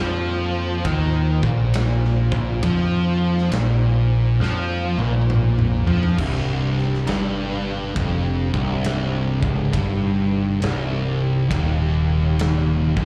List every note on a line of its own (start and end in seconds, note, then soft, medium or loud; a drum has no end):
0.00 0.81 F2 loud
0.00 0.84 F3 loud
0.00 6.15 A#3 medium
0.00 2.60 F4 medium
0.00 6.15 C5 medium
0.85 1.39 D#2 loud
0.85 1.41 D#3 medium
0.85 kick loud
0.85 ride bell medium
1.43 2.28 A#1 medium
1.43 2.30 A#2 medium
1.43 kick loud
1.74 snare loud
1.74 ride bell medium
2.05 snare soft
2.32 2.60 A#1 loud
2.32 2.62 A#2 loud
2.32 kick loud
2.63 3.48 F2 medium
2.63 3.51 F3 loud
2.63 6.15 D#4 medium
2.63 kick loud
2.63 ride bell medium
3.38 snare soft
3.51 4.37 A#1 medium
3.51 4.39 A#2 loud
3.51 snare loud
3.51 ride bell medium
4.40 4.94 F2 medium
4.40 4.97 F3 medium
4.40 snare medium
4.98 5.83 A#1 loud
4.98 5.85 A#2 loud
4.98 high tom medium
5.30 mid tom loud
5.59 mid tom medium
5.87 6.16 F2 medium
5.87 6.17 F3 loud
5.87 floor tom loud
6.03 floor tom loud
6.18 7.03 C1 loud
6.18 7.07 C2 loud
6.18 13.05 C3 medium
6.18 9.70 D4 medium
6.18 13.05 G4 medium
6.18 kick loud
6.18 crash loud
6.78 snare soft
6.94 snare soft
7.07 7.92 G1 loud
7.07 7.95 G2 loud
7.07 snare loud
7.07 ride bell medium
7.95 8.50 F1 medium
7.95 8.51 F2 loud
7.95 kick loud
7.95 ride bell medium
8.53 9.38 C1 loud
8.53 9.40 C2 loud
8.53 kick loud
8.84 snare loud
8.84 ride bell medium
9.41 9.71 C#1 loud
9.41 9.72 C#2 loud
9.41 kick loud
9.72 10.58 G1 medium
9.72 10.60 G2 loud
9.72 13.05 D#4 medium
9.72 kick loud
9.72 ride bell medium
10.61 11.46 C1 loud
10.61 11.49 C2 loud
10.61 snare loud
10.61 ride bell medium
11.50 12.92 D#1 medium
11.50 12.94 D#2 loud
11.50 kick loud
11.50 ride bell medium
12.39 snare loud
12.39 ride bell medium
12.96 13.05 F#1 loud
12.96 13.05 F#2 loud
12.96 kick loud